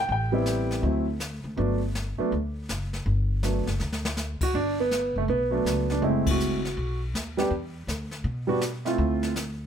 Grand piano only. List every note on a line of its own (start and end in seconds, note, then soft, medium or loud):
0.00 0.10 G5 medium
0.12 0.81 G5 medium
0.32 0.80 G3 medium
0.32 0.80 B3 medium
0.32 0.81 C4 medium
0.32 0.81 E4 medium
0.82 1.04 F#3 medium
0.82 1.04 A3 soft
0.82 1.05 C4 soft
0.82 1.05 E4 medium
1.57 1.79 F#3 medium
1.57 1.79 A3 soft
1.57 1.79 B3 soft
1.57 1.80 D4 medium
2.18 2.30 F#3 medium
2.18 2.30 A3 medium
2.18 2.31 B3 medium
2.18 2.31 D4 medium
3.43 3.65 F#3 soft
3.43 3.65 A3 soft
3.43 3.65 B3 soft
3.43 3.65 D4 soft
4.43 4.54 F#4 medium
4.55 4.77 D4 medium
4.80 5.14 B3 medium
5.18 5.23 A3 medium
5.30 5.51 B3 medium
5.51 5.99 F#3 medium
5.51 6.00 A3 medium
5.51 6.00 B3 medium
5.51 5.90 D4 medium
5.92 6.03 D4 medium
6.02 6.58 G#3 medium
6.02 6.59 A3 medium
6.02 6.59 C4 medium
6.02 6.59 E4 medium
6.31 6.99 F#4 medium
7.37 7.49 G3 medium
7.37 7.50 B3 medium
7.37 7.50 D4 medium
7.37 7.50 G4 medium
8.47 8.60 G3 medium
8.47 8.60 B3 medium
8.47 8.60 D4 medium
8.47 8.61 F#4 medium
8.85 9.33 A3 medium
8.85 9.33 C4 medium
8.85 9.34 E4 medium
8.85 9.34 F4 medium